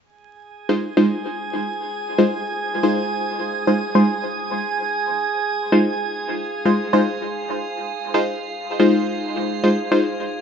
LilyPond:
<<
  \new Staff \with { instrumentName = "Synth texture" } { \time 4/4 \key f \minor \tempo 4 = 161 <aes' aes''>1~ | <aes' aes''>1~ | <aes' aes''>1~ | <aes' aes''>1 |
f''1~ | f''1~ | f''1 | }
  \new Staff \with { instrumentName = "Synth stab" } { \time 4/4 \key f \minor r4. r16 <aes ees' f' c''>16 r8 <aes ees' f' c''>16 r4 r16 | r4. r16 <aes ees' f' c''>16 r4. <aes ees' f' c''>8~ | <aes ees' f' c''>4.~ <aes ees' f' c''>16 <aes ees' f' c''>16 r8 <aes ees' f' c''>16 r4 r16 | r2. r16 <aes ees' f' c''>16 r8 |
r4. r16 <aes ees' f' c''>16 r8 <aes ees' f' c''>16 r4 r16 | r4. r16 <aes ees' f' c''>16 r4. <aes ees' f' c''>8~ | <aes ees' f' c''>4.~ <aes ees' f' c''>16 <aes ees' f' c''>16 r8 <aes ees' f' c''>16 r4 r16 | }
>>